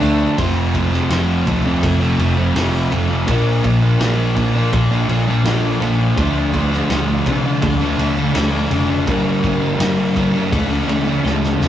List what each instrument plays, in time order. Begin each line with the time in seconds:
Already playing: overdriven electric guitar D3, clean electric guitar A4
0.00 picked electric bass D2, distorted electric guitar D3, overdriven electric guitar F3 A3 D4, open hi-hat
0.37 picked electric bass F1, overdriven electric guitar F2 C3 F3 A3 C4, clean electric guitar C5, kick, ride
0.73 overdriven electric guitar C3 F3 A3 C4, kick, ride
0.91 overdriven electric guitar F3 A3 C4, snare
1.09 picked electric bass F1, overdriven electric guitar F2 C3 F3 A3 C4, clean electric guitar C5, snare, ride
1.46 picked electric bass D2, distorted electric guitar F2, overdriven electric guitar C3 F3 A3 C4, kick, ride
1.64 overdriven electric guitar F3 A3 C4, muted distorted electric guitar stroke
1.83 picked electric bass F1, clean electric guitar A4, kick, ride
2.00 distorted electric guitar C3, overdriven electric guitar F3 A3 C4
2.17 picked electric bass F1, distorted electric guitar F2, overdriven electric guitar C3 F3 A3 C4, ride
2.36 overdriven electric guitar F3 A3 C4, muted distorted electric guitar stroke
2.54 picked electric bass F1, overdriven electric guitar F2 C3 F3 A3 C4, clean electric guitar A4, snare, ride
2.91 picked electric bass F1, distorted electric guitar F2, overdriven electric guitar C3 F3 A3 C4, ride
3.09 distorted electric guitar C3 F3
3.27 picked electric bass A#1, overdriven electric guitar A#2 F3 A#3 D4, clean electric guitar A#4, kick, ride
3.64 picked electric bass A#1, overdriven electric guitar A#2 F3 A#3 D4, kick, ride
3.81 overdriven electric guitar F3 A#3 D4
4.00 picked electric bass A#1, overdriven electric guitar A#2 F3 A#3 D4, clean electric guitar A#4, snare, ride
4.36 overdriven electric guitar A#2 F3 A#3 D4, kick, ride
4.54 overdriven electric guitar F3 A#3 D4, muted distorted electric guitar stroke
4.72 picked electric bass A#1, clean electric guitar A4, kick, ride
4.91 overdriven electric guitar F3 A#3 D4
5.08 picked electric bass A#1, overdriven electric guitar A#2 F3 A#3 D4, ride
5.27 overdriven electric guitar F3 A#3 D4, muted distorted electric guitar stroke
5.44 picked electric bass A#1, overdriven electric guitar A#2 F3 A#3 D4, clean electric guitar A4, snare, ride
5.81 picked electric bass A#1, overdriven electric guitar A#2 F3 A#3 D4, ride
5.99 distorted electric guitar F3 A#3
6.17 picked electric bass D2, overdriven electric guitar D3 F3 A3 D4, clean electric guitar C5, kick, ride
6.53 overdriven electric guitar D3 F3 A3 D4, kick, ride
6.72 overdriven electric guitar F3 A3 D4, snare
6.88 picked electric bass D2, overdriven electric guitar D3 F3 A3 D4, clean electric guitar C5, snare, ride
7.26 picked electric bass C3, overdriven electric guitar D3 F3 A3 D4, kick, ride
7.45 overdriven electric guitar F3 A3 D4, muted distorted electric guitar stroke
7.62 picked electric bass D2, clean electric guitar A4, kick, ride
7.79 overdriven electric guitar F3 A3 D4
7.98 picked electric bass D2, overdriven electric guitar D3 F3 A3 D4, ride
8.15 overdriven electric guitar F3 A3 D4, muted distorted electric guitar stroke
8.34 picked electric bass D2, overdriven electric guitar D3 F3 A3 D4, clean electric guitar A4, snare, ride
8.70 picked electric bass F1, overdriven electric guitar D3 F3 A3 D4, ride
8.88 distorted electric guitar A3 D4
9.06 picked electric bass G1, overdriven electric guitar G2 D3 G3 A#3 D4, clean electric guitar A#4, kick, ride
9.42 picked electric bass G1, overdriven electric guitar D3 G3 A#3 D4, kick, ride
9.61 overdriven electric guitar G3 A#3 D4
9.79 picked electric bass G1, overdriven electric guitar G2 D3 G3 A#3 D4, clean electric guitar A#4, snare, ride
10.15 distorted electric guitar G2, overdriven electric guitar D3 G3 A#3 D4, kick, ride
10.33 overdriven electric guitar G3 A#3 D4, muted distorted electric guitar stroke
10.52 picked electric bass D2, overdriven electric guitar D3 F3 A3 D4, clean electric guitar A4, kick, ride
10.69 overdriven electric guitar F3 A3 D4
10.87 picked electric bass D2, overdriven electric guitar D3 F3 A3 D4, ride
11.06 overdriven electric guitar F3 A3 D4, muted distorted electric guitar stroke
11.24 picked electric bass D2, overdriven electric guitar D3 F3 A3 D4, clean electric guitar A4, snare
11.44 snare
11.60 picked electric bass E2, overdriven electric guitar D3 F3 A3 D4, snare